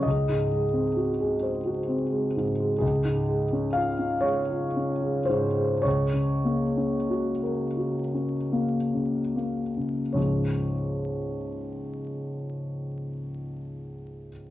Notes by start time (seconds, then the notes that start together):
0.03 C#2 D#5
0.29 G#2
0.52 G#3
0.73 C4
0.96 F#4
1.21 G#4
1.43 C5
1.65 F#4
1.88 C4
2.12 G#3
2.37 G#2
2.60 G#3
2.78 C#2 G#4
3.05 G#2
3.29 G#3
3.53 C#4
3.73 F4 F5
3.99 C#4
4.21 G#3 C#5
4.50 F4
4.77 C#4
5.02 G#3
5.25 C5
5.29 G#2
5.58 G#3
5.82 C#2 C#5
6.13 C#3
6.45 A#3
6.77 C#4
7.10 F#4
7.43 A#4
7.77 F#4
8.14 C#4
8.53 A#3
8.94 C#3
9.36 A#3
9.77 C#3
10.13 C#2 G#2 F3 G#3 C#4 F4 C#5